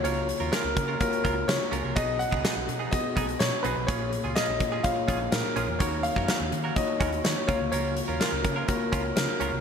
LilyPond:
<<
  \new Staff \with { instrumentName = "Grand piano" } { \time 4/4 \key ges \major \tempo 4 = 125 des''4 bes'4 bes'4 des''4 | dis''8 fis''4. dis''4 des''8 b'8 | des''4 ees''4 f''4 bes'4 | des''8 f''4. ees''4 des''8 des''8 |
des''4 bes'4 bes'4 bes'4 | }
  \new Staff \with { instrumentName = "Clean electric guitar" } { \time 4/4 \key ges \major <des' f' bes'>8 r16 <des' f' bes'>16 <des' f' bes'>16 r8 <des' f' bes'>16 r8 <des' f' bes'>16 r8. <des' f' bes'>16 <des' f' bes'>16 | <b dis' gis'>8 r16 <b dis' gis'>16 <b dis' gis'>16 r8 <b dis' gis'>16 r8 <b dis' gis'>16 r8. <b dis' gis'>16 r16 | <des' f' aes'>8 r16 <des' f' aes'>16 <des' f' aes'>16 r8 <des' f' aes'>16 r8 <des' f' aes'>16 r8. <des' f' aes'>16 r16 | <des' ges' bes'>8 r16 <des' ges' bes'>16 <des' ges' bes'>16 r8 <des' ges' bes'>16 r8 <des' ges' bes'>16 r8. <des' f' bes'>16 r16 |
<des' f' bes'>8 r16 <des' f' bes'>16 <des' f' bes'>16 r8 <des' f' bes'>16 r8 <des' f' bes'>16 r8. <des' f' bes'>16 r16 | }
  \new Staff \with { instrumentName = "Tine electric piano" } { \time 4/4 \key ges \major <des bes f' ges' des''>4 r4 <bes f' ges' des''>4. r8 | <b, b fis' gis' dis''>4. r8 <b fis' gis' dis''>4. r8 | <bes, bes f' aes' des''>4. r8 <bes f' aes' des''>4. r8 | <ees bes ees' ges' des''>4. r8 <bes ees' ges' des''>4. <des bes f' ges' des''>8~ |
<des bes f' ges' des''>4 r4 <bes f' ges' des''>4. r8 | }
  \new Staff \with { instrumentName = "Picked electric bass" } { \clef bass \time 4/4 \key ges \major des,8. ees,16 r16 des,16 des8 r8 des,8 des16 r16 des,16 c,16 | b,,8. des,16 r16 b,,16 b,8 r8 b,,8 b,16 r16 b,,16 b,,16 | bes,,8. des,16 r16 bes,,16 bes,8 r8 bes,,8 bes,16 r16 bes,,16 fes,16 | ees,8. ges,16 r16 ees,16 ees8 r8 ees,8 ees16 r16 des,16 d,16 |
des,8. ees,16 r16 des,16 des8 r8 des,8 des16 r16 des,16 c,16 | }
  \new DrumStaff \with { instrumentName = "Drums" } \drummode { \time 4/4 hh8 hh8 <hh sn>8 <hh bd>8 <hh bd>16 hh16 <hh bd>8 <hh sn>8 hh8 | <hh bd>8 hh16 bd16 <hh sn>8 hh8 <hh bd>8 <hh bd>16 hh16 <hh sn>8 hh8 | <hh bd>8 hh8 <hh sn>8 <hh bd>8 <hh bd>8 <hh bd>8 <hh sn>8 hh8 | <hh bd>8 hh16 bd16 <hh sn>8 hh8 <hh bd>8 <hh bd>16 hh16 <hh sn>8 <hh bd>8 |
hh8 hh8 <hh sn>8 <hh bd>8 <hh bd>8 <hh bd>8 <hh sn>8 hh8 | }
>>